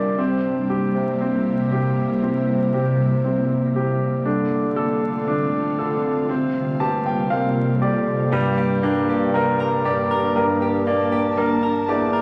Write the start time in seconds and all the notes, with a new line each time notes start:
Already playing: A#2 G3 A#3 C4 D4 F4 D5 E5 F5 G5 A5
0.19 C3 A#3 C4 E4
0.70 G4
0.95 C3
1.21 C4
1.72 C3 G4
2.23 C4
2.74 G4
3.24 C4
3.75 C3 G4
4.26 D3 A3 C4 D4 F4
4.76 A4
5.03 D3
5.28 D4
5.79 D3 A4
6.29 C3 G3 A#3 C4
6.80 G2 G4 A5
7.06 G5
7.30 A#2 C4 F5
7.82 F2 G4 D5
8.32 G2 G3 A#3 D4 G4
8.58 G4
8.83 A#3 D4
9.09 G2 G4
9.34 G3 A#4
9.60 A#4
9.85 G2 G4 D5
10.11 A#4
10.36 G2 A#4 A5
10.62 G4
10.87 A#3 D5
11.12 G4
11.38 G3 A#4
11.63 A#4
11.88 E2 G4 D5
12.13 A#4